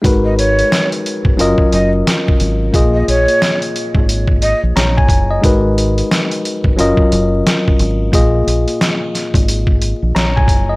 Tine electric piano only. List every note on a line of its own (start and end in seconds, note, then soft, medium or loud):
0.02 1.35 G#3 medium
0.02 1.36 D#4 medium
0.02 1.36 F#4 medium
0.02 1.37 A#4 medium
0.06 1.37 B4 medium
1.37 2.70 F#3 medium
1.37 2.71 C#4 medium
1.37 2.71 F4 medium
1.37 2.72 A#4 medium
1.41 2.72 D#5 medium
2.71 5.38 A#2 medium
2.71 5.39 A#3 medium
2.71 5.39 F4 medium
2.71 5.40 G#4 medium
2.76 4.73 D#5 medium
4.76 4.96 C#5 medium
4.76 4.95 A#5 medium
4.97 5.29 G#5 medium
5.30 5.62 D#5 medium
5.41 6.74 G#3 medium
5.41 6.75 D#4 medium
5.41 6.76 F#4 medium
5.41 6.76 A#4 medium
5.45 6.77 B4 medium
6.76 8.09 F#3 medium
6.76 8.10 C#4 medium
6.76 8.11 F4 medium
6.76 8.11 A#4 medium
6.81 8.12 D#5 medium
8.11 10.76 A#2 medium
8.11 10.76 A#3 medium
8.11 10.76 F4 medium
8.11 10.76 G#4 medium
8.15 10.12 D#5 medium
10.15 10.35 C#5 medium
10.15 10.35 A#5 medium
10.36 10.68 G#5 medium
10.69 10.76 D#5 medium